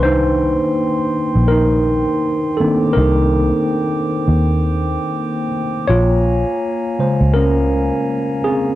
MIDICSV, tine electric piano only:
0, 0, Header, 1, 2, 480
1, 0, Start_track
1, 0, Tempo, 731707
1, 21, Time_signature, 4, 2, 24, 8
1, 5741, End_track
2, 0, Start_track
2, 0, Title_t, "Tine electric piano"
2, 0, Program_c, 0, 4
2, 0, Control_c, 0, 64, 127
2, 0, Note_on_c, 0, 51, 51
2, 0, Note_on_c, 0, 58, 48
2, 0, Note_on_c, 0, 62, 62
2, 0, Note_on_c, 0, 71, 84
2, 20, Note_on_c, 0, 72, 111
2, 33, Note_on_c, 0, 63, 82
2, 954, Note_off_c, 0, 72, 0
2, 961, Note_off_c, 0, 63, 0
2, 971, Note_on_c, 0, 70, 95
2, 996, Note_on_c, 0, 63, 72
2, 1676, Note_off_c, 0, 51, 0
2, 1679, Note_off_c, 0, 58, 0
2, 1680, Note_off_c, 0, 62, 0
2, 1683, Note_off_c, 0, 63, 0
2, 1686, Note_on_c, 0, 69, 81
2, 1706, Note_on_c, 0, 51, 54
2, 1707, Note_on_c, 0, 58, 48
2, 1712, Note_on_c, 0, 60, 63
2, 1713, Note_on_c, 0, 62, 56
2, 1718, Note_off_c, 0, 70, 0
2, 1923, Note_on_c, 0, 70, 88
2, 1930, Note_off_c, 0, 60, 0
2, 1941, Note_off_c, 0, 69, 0
2, 1952, Note_on_c, 0, 63, 64
2, 3586, Note_off_c, 0, 70, 0
2, 3597, Note_off_c, 0, 51, 0
2, 3598, Note_off_c, 0, 58, 0
2, 3600, Note_off_c, 0, 63, 0
2, 3601, Note_off_c, 0, 62, 0
2, 3854, Note_on_c, 0, 73, 109
2, 3868, Control_c, 0, 64, 0
2, 3868, Note_on_c, 0, 65, 81
2, 3874, Note_off_c, 0, 71, 0
2, 3977, Control_c, 0, 64, 127
2, 4585, Note_on_c, 0, 49, 52
2, 4589, Note_on_c, 0, 56, 46
2, 4593, Note_on_c, 0, 72, 59
2, 4791, Note_off_c, 0, 73, 0
2, 4799, Note_off_c, 0, 65, 0
2, 4813, Note_on_c, 0, 70, 89
2, 4830, Note_on_c, 0, 61, 67
2, 5511, Note_off_c, 0, 70, 0
2, 5519, Note_off_c, 0, 61, 0
2, 5537, Note_on_c, 0, 68, 75
2, 5551, Note_on_c, 0, 60, 62
2, 5741, Note_off_c, 0, 49, 0
2, 5741, Note_off_c, 0, 56, 0
2, 5741, Note_off_c, 0, 60, 0
2, 5741, Note_off_c, 0, 68, 0
2, 5741, Note_off_c, 0, 72, 0
2, 5741, End_track
0, 0, End_of_file